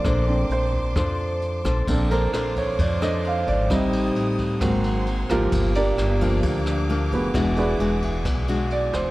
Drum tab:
RD |--------|xxxxxxxx|xxxxxxxx|xxxxxxxx|
HH |xxxxxxxx|--------|--------|--------|
SD |r---r--r|--r--r--|r---r--r|--r--r--|
BD |o--oo--o|o--oo--o|o--oo--o|o--oo--o|

RD |xxxxxxxx|
HH |--------|
SD |r---r--r|
BD |o--oo--o|